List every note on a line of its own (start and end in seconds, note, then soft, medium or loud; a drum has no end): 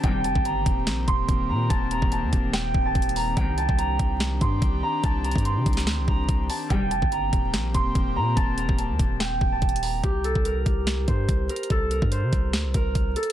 0.00 0.26 D#1 loud
0.00 0.43 C3 medium
0.00 10.00 D#3 medium
0.00 0.43 D#3 medium
0.00 0.43 G3 loud
0.00 3.34 A#3 medium
0.00 6.66 C4 medium
0.00 3.33 G4 medium
0.00 1.59 G5 loud
0.00 0.24 A5 medium
0.00 kick loud
0.00 closed hi-hat medium
0.24 0.35 F1 loud
0.24 0.52 A5 medium
0.24 closed hi-hat medium
0.35 0.65 G1 loud
0.35 kick medium
0.45 1.49 A#5 medium
0.45 closed hi-hat medium
0.66 0.88 D#1 loud
0.66 kick loud
0.66 closed hi-hat medium
0.87 1.07 A#1 loud
0.87 snare loud
0.87 closed hi-hat medium
1.08 1.28 D#1 loud
1.08 2.38 C6 medium
1.08 kick medium
1.08 closed hi-hat medium
1.29 1.51 D#1 loud
1.29 kick loud
1.29 closed hi-hat medium
1.49 1.69 A#2 loud
1.49 1.76 A#5 medium
1.70 2.01 D#1 loud
1.70 1.97 A5 loud
1.70 kick loud
1.70 closed hi-hat medium
1.91 2.18 A#5 medium
1.91 closed hi-hat medium
2.02 2.24 D#1 loud
2.02 kick medium
2.12 2.85 A5 medium
2.12 closed hi-hat medium
2.23 2.32 D#2 loud
2.33 2.73 D#1 loud
2.33 kick loud
2.33 closed hi-hat medium
2.53 3.37 G5 loud
2.53 snare loud
2.53 closed hi-hat medium
2.74 2.94 D1 loud
2.74 kick loud
2.86 3.22 A5 medium
2.95 3.35 D#1 loud
2.95 kick loud
2.95 closed hi-hat soft
3.02 closed hi-hat medium
3.09 closed hi-hat medium
3.16 3.64 A#5 medium
3.16 open hi-hat medium
3.37 3.68 C2 loud
3.37 3.77 G2 medium
3.37 3.77 C3 loud
3.37 3.77 D#3 loud
3.37 6.67 D4 medium
3.37 6.67 G4 medium
3.37 4.92 G5 loud
3.37 kick loud
3.37 closed hi-hat medium
3.58 3.84 A5 medium
3.58 closed hi-hat medium
3.69 3.98 C2 loud
3.69 kick medium
3.78 4.83 A#5 medium
3.78 closed hi-hat medium
3.99 4.39 C2 loud
3.99 kick loud
3.99 closed hi-hat medium
4.20 snare loud
4.20 closed hi-hat medium
4.41 4.61 G2 loud
4.41 5.45 C6 medium
4.41 kick loud
4.41 closed hi-hat medium
4.62 4.82 C2 loud
4.62 kick loud
4.62 closed hi-hat medium
4.83 5.10 A#5 medium
5.04 5.34 C2 loud
5.04 5.30 A5 loud
5.04 kick loud
5.04 closed hi-hat medium
5.24 6.08 A#5 medium
5.24 closed hi-hat soft
5.31 closed hi-hat medium
5.35 5.58 G2 loud
5.35 kick medium
5.35 closed hi-hat medium
5.45 6.76 C6 medium
5.45 closed hi-hat medium
5.56 5.66 C3 loud
5.66 5.88 C2 loud
5.66 kick loud
5.66 closed hi-hat medium
5.73 closed hi-hat medium
5.77 snare medium
5.77 closed hi-hat medium
5.87 6.00 D2 loud
5.87 snare loud
5.87 closed hi-hat medium
5.98 6.07 C2 loud
6.08 6.28 C2 loud
6.08 6.56 A#5 medium
6.08 kick loud
6.29 6.49 C2 loud
6.29 kick loud
6.29 closed hi-hat medium
6.50 6.90 A5 medium
6.50 open hi-hat medium
6.70 6.93 D#1 loud
6.70 7.10 C3 medium
6.70 7.10 D#3 loud
6.70 7.10 G3 loud
6.70 10.00 A#3 medium
6.70 10.00 C4 medium
6.70 10.00 G4 medium
6.70 8.26 G5 loud
6.70 kick loud
6.70 closed hi-hat medium
6.91 7.02 F1 loud
6.91 7.18 A5 medium
6.91 closed hi-hat medium
7.02 7.32 G1 loud
7.02 kick medium
7.12 8.16 A#5 medium
7.12 closed hi-hat medium
7.33 7.55 D#1 loud
7.33 kick loud
7.33 closed hi-hat medium
7.54 7.73 A#1 loud
7.54 snare loud
7.54 closed hi-hat medium
7.74 7.94 D#1 loud
7.74 9.05 C6 medium
7.74 kick loud
7.74 closed hi-hat medium
7.95 8.18 D#1 loud
7.95 kick loud
7.95 closed hi-hat medium
8.16 8.36 A#2 loud
8.16 8.42 A#5 medium
8.36 8.68 D#1 loud
8.36 8.64 A5 loud
8.36 kick loud
8.36 closed hi-hat medium
8.58 8.85 A#5 medium
8.58 closed hi-hat medium
8.69 8.91 D#1 loud
8.69 kick medium
8.79 9.52 A5 medium
8.79 closed hi-hat medium
8.90 8.99 D#2 loud
8.99 9.39 D#1 loud
8.99 kick loud
8.99 closed hi-hat medium
9.20 10.75 G5 loud
9.20 snare loud
9.20 closed hi-hat medium
9.41 9.61 D1 loud
9.41 kick loud
9.52 9.89 A5 medium
9.62 10.02 D#1 loud
9.62 kick loud
9.62 closed hi-hat soft
9.69 closed hi-hat medium
9.76 closed hi-hat medium
9.83 10.31 A#5 medium
9.83 open hi-hat medium
10.04 10.34 C2 loud
10.04 12.39 G4 medium
10.04 kick loud
10.04 closed hi-hat medium
10.24 10.51 A4 medium
10.24 closed hi-hat medium
10.35 10.65 C2 loud
10.35 kick medium
10.45 11.49 A#4 medium
10.45 closed hi-hat medium
10.66 11.06 C2 loud
10.66 kick loud
10.66 closed hi-hat medium
10.87 snare loud
10.87 closed hi-hat medium
11.08 11.28 G2 loud
11.08 12.11 C5 medium
11.08 kick medium
11.08 closed hi-hat medium
11.29 11.49 C2 loud
11.29 kick loud
11.29 closed hi-hat medium
11.49 11.77 A#4 medium
11.49 closed hi-hat medium
11.56 closed hi-hat medium
11.63 closed hi-hat medium
11.70 12.01 C2 loud
11.70 11.97 A4 loud
11.70 kick loud
11.70 closed hi-hat medium
11.91 12.75 A#4 medium
11.91 closed hi-hat medium
12.02 12.24 G2 loud
12.02 kick medium
12.12 13.32 C5 medium
12.12 closed hi-hat medium
12.23 12.32 C3 loud
12.33 12.55 C2 loud
12.33 kick medium
12.33 closed hi-hat medium
12.53 12.66 D2 medium
12.53 snare loud
12.53 closed hi-hat medium
12.65 12.74 C2 loud
12.74 12.94 C2 loud
12.74 13.22 A#4 medium
12.74 kick medium
12.74 closed hi-hat medium
12.95 13.15 C2 loud
12.95 kick loud
12.95 closed hi-hat medium
13.16 13.32 A4 medium
13.16 closed hi-hat medium
13.23 closed hi-hat medium